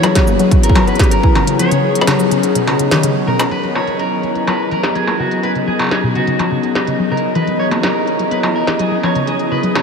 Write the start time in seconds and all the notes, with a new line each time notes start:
Already playing: F#3 B3 C#4 E4 G#4 C#5
0.03 F#3, closed hi-hat, struck metal
0.15 F#3, kick, snare, closed hi-hat
0.27 A#3, cabasa
0.39 F#3, closed hi-hat
0.51 kick, closed hi-hat
0.63 A#4, closed hi-hat
0.69 kick
0.75 F#3, struck metal
0.87 B3 B4, closed hi-hat
0.95 closed hi-hat
0.99 F#3, kick, snare, closed hi-hat
1.11 A#4, closed hi-hat
1.23 E3, kick
1.35 C#3 C#4 D#4, struck metal
1.47 C#3, closed hi-hat
1.59 F3 C#5, closed hi-hat
1.71 C#3, closed hi-hat
1.95 closed hi-hat
2.01 struck metal
2.07 C#3, snare, closed hi-hat, struck metal
2.19 F#3, cabasa
2.31 C#3, closed hi-hat
2.43 closed hi-hat
2.54 B2 B4, closed hi-hat
2.67 C#3, struck metal
2.79 C#3, closed hi-hat
2.91 D#3, snare
3.03 C#3, closed hi-hat
3.27 B2 A#4
3.39 C#4, closed hi-hat, struck metal
3.51 F#3 B3 C#4 E4 G#4 B4 D#5, closed hi-hat
3.63 F#3, closed hi-hat
3.75 A#3 C#5, struck metal
3.87 F#3, closed hi-hat
3.99 A#4, closed hi-hat
4.23 F#3, closed hi-hat
4.35 B3, closed hi-hat
4.47 F#3 B4, closed hi-hat, struck metal
4.71 E3 A#4, closed hi-hat
4.83 F#3, snare, closed hi-hat
4.95 F#3 G#4, closed hi-hat
5.07 A#3, struck metal
5.19 C#3 D#4 F#4
5.31 closed hi-hat
5.43 B4, closed hi-hat
5.55 C#3, closed hi-hat
5.67 F#3 G#4
5.79 C#3, closed hi-hat, struck metal
5.82 struck metal
5.84 struck metal
5.87 struck metal
5.89 G#4, snare, closed hi-hat, struck metal
6.03 B2
6.15 C#3 F#4, closed hi-hat
6.27 C#3, closed hi-hat
6.39 F3, closed hi-hat, struck metal
6.51 C#3
6.63 closed hi-hat
6.75 snare, closed hi-hat
6.87 C#3, closed hi-hat
6.99 F#3
7.11 C#3 A#4
7.17 closed hi-hat
7.35 E3 E4 G#4 B4, closed hi-hat
7.47 F#3, closed hi-hat
7.59 F#3 C#5
7.71 A#3, closed hi-hat, struck metal
7.83 F#3 A#4, snare, closed hi-hat
8.07 closed hi-hat
8.19 F#3, closed hi-hat
8.31 B3 B4, closed hi-hat
8.43 F#3, struck metal
8.56 A#4
8.67 E3, snare, closed hi-hat
8.79 F#3 G#4, closed hi-hat
8.91 F#3
9.03 F3 B3 D#4 C#5, struck metal
9.15 C#3, closed hi-hat
9.27 G#4, closed hi-hat
9.39 closed hi-hat
9.51 C#3 B4
9.63 F#3, closed hi-hat
9.75 C#3 C#5, snare, closed hi-hat, struck metal